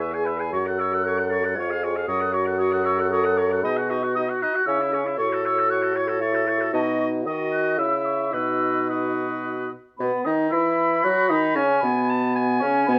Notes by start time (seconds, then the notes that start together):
Already playing: E2 B4 C#6
0.00 G#4 E5
0.12 G#4 G#5
0.25 B4 E5 B5
0.38 G#4 G#5
0.52 F#2 F#4 C#5 C#6
0.66 A4 F#5
0.78 F#4 C#5 E6
0.92 A4 F#5
1.04 F#4 A4 C#5 F#6
1.18 A4 F#5
1.29 F#4 C#5 A6
1.45 A4 F#5
1.55 F2 F4 G#6
1.59 C#5
1.70 G#4 F5
1.82 F4 G#4 C#5
1.96 G#4 F5
2.07 F#2 F#4 C#5 D#6
2.21 A4 F#5
2.33 F#4 C#5 C#6
2.47 A4 F#5
2.57 F#4 C#5 D#6
2.71 A4 F#5
2.84 F#4 C#5 E6
2.98 A4 F#5
3.11 F#4 A4 C#5 D#6
3.25 A4 F#5
3.37 F#4 C#5 C#6
3.50 A4 F#5
3.63 B2 D#4 G#4 D#5 B5
3.77 F#4 F#5
3.88 D#4 D#5 C#6
4.03 F#4 F#5
4.15 D#4 F#4 D#5 D#6
4.28 F#4 F#5
4.40 D#4 D#5 F#6
4.54 F#4 F#5
4.66 C#3 C#4 E4 C#5 E6
4.80 E4 E5
4.92 C#4 G#4 C#5
5.05 E4 E5
5.17 A2 F#4 A4 C#5 C#6
5.30 F#4 A4
5.42 A4 C#5 E6
5.56 F#4 A4
5.68 A4 C#5 F#6
5.82 F#4 A4
5.94 A4 C#5 G#6
6.08 F#4 A4
6.20 E4 A4 C#5 A6
6.33 F#4 A4
6.46 A4 C#5
6.59 F#4 A4
6.72 B2 D#4 F#4 D#5 A5
6.99 C#6
7.24 D#3 F#4 D#5 D#6
7.53 F#6
7.78 C#3 E4 E5 E6
8.05 C#6
8.33 B2 D#4 F#4 B4 E6
8.89 F#4 B4 D#6
9.98 B2 B3 B5
10.24 D#3 D#4 D#6
10.50 E3 E4 B5 E6
11.03 F#3 F#4 F#6
11.29 D#3 D#4 D#6
11.54 C#3 C#4 G#5 C#6
11.81 B2 B3 B5
12.09 A5
12.36 G#5
12.60 C#3 C#4 C#6
12.86 B2 B3 B5